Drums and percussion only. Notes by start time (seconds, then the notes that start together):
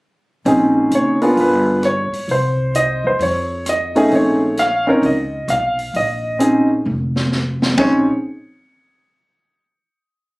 0.46 open hi-hat
0.91 closed hi-hat
1.22 open hi-hat
1.37 open hi-hat
1.83 cross-stick, closed hi-hat
2.13 open hi-hat
2.29 open hi-hat
2.75 closed hi-hat
3.20 open hi-hat
3.66 cross-stick, closed hi-hat
3.96 open hi-hat
4.11 open hi-hat
4.57 snare, closed hi-hat
4.87 kick
5.03 open hi-hat
5.48 cross-stick, closed hi-hat
5.79 open hi-hat
5.94 open hi-hat
6.40 closed hi-hat
6.86 high tom
7.16 snare
7.32 snare
7.62 snare
7.78 kick, ride bell